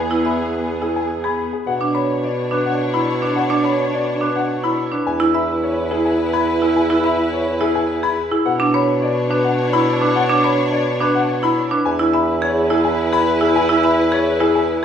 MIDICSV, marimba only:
0, 0, Header, 1, 2, 480
1, 0, Start_track
1, 0, Tempo, 566038
1, 1414, Time_signature, 3, 2, 24, 8
1, 12592, End_track
2, 0, Start_track
2, 0, Title_t, "Marimba"
2, 0, Program_c, 0, 12
2, 91, Note_on_c, 0, 64, 70
2, 211, Note_on_c, 0, 76, 56
2, 249, Note_off_c, 0, 64, 0
2, 369, Note_off_c, 0, 76, 0
2, 691, Note_on_c, 0, 64, 57
2, 849, Note_off_c, 0, 64, 0
2, 1052, Note_on_c, 0, 68, 56
2, 1209, Note_off_c, 0, 68, 0
2, 1533, Note_on_c, 0, 62, 78
2, 1652, Note_on_c, 0, 73, 59
2, 1690, Note_off_c, 0, 62, 0
2, 1809, Note_off_c, 0, 73, 0
2, 2130, Note_on_c, 0, 62, 65
2, 2288, Note_off_c, 0, 62, 0
2, 2492, Note_on_c, 0, 64, 62
2, 2649, Note_off_c, 0, 64, 0
2, 2731, Note_on_c, 0, 62, 62
2, 2889, Note_off_c, 0, 62, 0
2, 2970, Note_on_c, 0, 62, 82
2, 3091, Note_on_c, 0, 73, 64
2, 3128, Note_off_c, 0, 62, 0
2, 3249, Note_off_c, 0, 73, 0
2, 3572, Note_on_c, 0, 62, 67
2, 3729, Note_off_c, 0, 62, 0
2, 3932, Note_on_c, 0, 64, 65
2, 4089, Note_off_c, 0, 64, 0
2, 4170, Note_on_c, 0, 62, 63
2, 4329, Note_off_c, 0, 62, 0
2, 4409, Note_on_c, 0, 64, 88
2, 4532, Note_on_c, 0, 76, 66
2, 4568, Note_off_c, 0, 64, 0
2, 4689, Note_off_c, 0, 76, 0
2, 5012, Note_on_c, 0, 64, 68
2, 5169, Note_off_c, 0, 64, 0
2, 5371, Note_on_c, 0, 68, 67
2, 5529, Note_off_c, 0, 68, 0
2, 5612, Note_on_c, 0, 64, 65
2, 5769, Note_off_c, 0, 64, 0
2, 5852, Note_on_c, 0, 64, 88
2, 5969, Note_on_c, 0, 76, 72
2, 6009, Note_off_c, 0, 64, 0
2, 6128, Note_off_c, 0, 76, 0
2, 6451, Note_on_c, 0, 64, 73
2, 6609, Note_off_c, 0, 64, 0
2, 6810, Note_on_c, 0, 68, 68
2, 6968, Note_off_c, 0, 68, 0
2, 7050, Note_on_c, 0, 64, 72
2, 7209, Note_off_c, 0, 64, 0
2, 7291, Note_on_c, 0, 62, 95
2, 7413, Note_on_c, 0, 73, 73
2, 7449, Note_off_c, 0, 62, 0
2, 7569, Note_off_c, 0, 73, 0
2, 7892, Note_on_c, 0, 62, 77
2, 8049, Note_off_c, 0, 62, 0
2, 8254, Note_on_c, 0, 64, 76
2, 8410, Note_off_c, 0, 64, 0
2, 8493, Note_on_c, 0, 62, 73
2, 8650, Note_off_c, 0, 62, 0
2, 8731, Note_on_c, 0, 62, 94
2, 8854, Note_on_c, 0, 73, 69
2, 8889, Note_off_c, 0, 62, 0
2, 9010, Note_off_c, 0, 73, 0
2, 9332, Note_on_c, 0, 62, 75
2, 9489, Note_off_c, 0, 62, 0
2, 9691, Note_on_c, 0, 64, 76
2, 9849, Note_off_c, 0, 64, 0
2, 9932, Note_on_c, 0, 62, 76
2, 10089, Note_off_c, 0, 62, 0
2, 10171, Note_on_c, 0, 64, 95
2, 10291, Note_on_c, 0, 76, 76
2, 10329, Note_off_c, 0, 64, 0
2, 10449, Note_off_c, 0, 76, 0
2, 10532, Note_on_c, 0, 68, 95
2, 10689, Note_off_c, 0, 68, 0
2, 10772, Note_on_c, 0, 64, 80
2, 10929, Note_off_c, 0, 64, 0
2, 11131, Note_on_c, 0, 68, 70
2, 11289, Note_off_c, 0, 68, 0
2, 11371, Note_on_c, 0, 64, 73
2, 11529, Note_off_c, 0, 64, 0
2, 11611, Note_on_c, 0, 64, 98
2, 11732, Note_on_c, 0, 76, 76
2, 11769, Note_off_c, 0, 64, 0
2, 11889, Note_off_c, 0, 76, 0
2, 11973, Note_on_c, 0, 68, 94
2, 12130, Note_off_c, 0, 68, 0
2, 12215, Note_on_c, 0, 64, 82
2, 12370, Note_off_c, 0, 64, 0
2, 12592, End_track
0, 0, End_of_file